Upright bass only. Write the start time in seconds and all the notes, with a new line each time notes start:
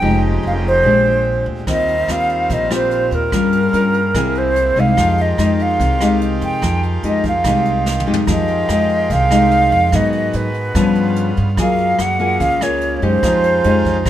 0.02 F1
0.43 F1
0.83 A#1
1.46 D2
1.67 D#2
2.08 D#2
2.50 A#1
3.11 D#2
3.32 G2
3.73 G2
4.15 C2
4.76 C2
4.97 F2
5.38 F2
5.80 C2
6.41 F2
6.62 F2
7.03 F2
7.44 C2
8.07 F2
8.27 F2
8.69 F2
9.11 C2
9.72 F2
9.92 G#2
10.34 G#2
10.75 G2
11.38 G2
11.57 F#2
11.99 F#2
12.40 C#2
13.02 F#2
13.23 F2
13.65 F2
14.05 A#1